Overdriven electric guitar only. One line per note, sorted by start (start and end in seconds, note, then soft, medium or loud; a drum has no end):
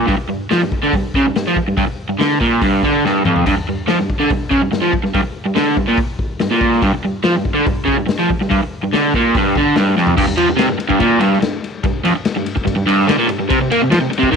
0.07 0.17 G2 loud
0.18 muted overdriven electric guitar stroke medium
0.29 0.46 G2 medium
0.51 0.61 F3 medium
0.62 0.78 G2 medium
0.83 0.92 D3 loud
0.95 1.11 G2 medium
1.16 1.25 C#3 loud
1.26 1.35 G2 medium
1.36 1.46 G2 medium
1.47 1.56 F3 medium
1.58 muted overdriven electric guitar stroke medium
1.68 1.76 G2 medium
1.77 1.86 G2 loud
1.87 muted overdriven electric guitar stroke medium
2.09 2.20 G2 medium
2.19 2.39 D3 medium
2.40 2.61 A#2 loud
2.62 2.82 G2 loud
2.84 3.04 D3 loud
3.05 3.25 G2 loud
3.25 3.45 F2 loud
3.46 3.56 G2 loud
3.57 muted overdriven electric guitar stroke medium
3.69 3.85 G2 medium
3.88 3.97 F3 medium
3.99 4.15 G2 medium
4.20 4.29 D3 loud
4.30 4.47 G2 medium
4.50 4.61 C#3 loud
4.62 4.70 G2 medium
4.72 4.82 G2 medium
4.82 4.92 F3 loud
4.92 muted overdriven electric guitar stroke medium
5.04 5.13 G2 medium
5.15 5.22 G2 loud
5.23 muted overdriven electric guitar stroke medium
5.46 5.56 G2 medium
5.55 5.76 D3 loud
5.77 5.88 G2 medium
5.88 5.97 A#2 loud
6.41 6.51 G2 medium
6.51 6.82 A#2 medium
6.83 6.92 G2 loud
6.95 muted overdriven electric guitar stroke medium
7.05 7.21 G2 medium
7.24 7.34 F3 medium
7.36 7.52 G2 medium
7.54 7.65 D3 loud
7.66 7.83 G2 medium
7.85 7.96 C#3 loud
7.97 8.05 G2 medium
8.06 8.18 G2 medium
8.19 8.28 F3 medium
8.31 muted overdriven electric guitar stroke medium
8.41 8.48 G2 medium
8.50 8.60 G2 loud
8.63 muted overdriven electric guitar stroke medium
8.83 8.93 G2 medium
8.93 9.13 D3 loud
9.15 9.34 A#2 loud
9.36 9.55 G2 loud
9.57 9.76 D3 loud
9.76 9.96 G2 loud
9.97 10.17 F2 loud
10.17 10.27 G2 loud
10.28 10.38 G2 medium
10.37 10.48 F3 loud
10.49 10.59 G2 medium
10.57 10.68 C3 loud
10.67 10.77 G2 medium
10.79 muted overdriven electric guitar stroke medium
10.89 10.99 G2 loud
11.00 11.20 A#2 loud
11.19 11.40 G2 loud
11.41 11.58 G2 medium
11.85 12.01 G2 medium
12.04 12.14 F2 loud
12.15 muted overdriven electric guitar stroke medium
12.36 12.52 G2 medium
12.56 muted overdriven electric guitar stroke medium
12.65 12.75 G2 medium
12.76 12.85 G2 medium
12.86 13.07 G2 loud
13.07 13.17 D3 loud
13.18 13.28 A#2 loud
13.27 13.38 G2 medium
13.39 13.50 G2 medium
13.49 13.59 C3 loud
13.61 13.71 C3 medium
13.71 13.81 A#3 loud
13.82 13.91 C3 medium
13.91 14.01 F3 loud
14.01 14.10 C3 medium
14.11 muted overdriven electric guitar stroke medium
14.19 14.30 C3 loud
14.32 14.36 D#3 loud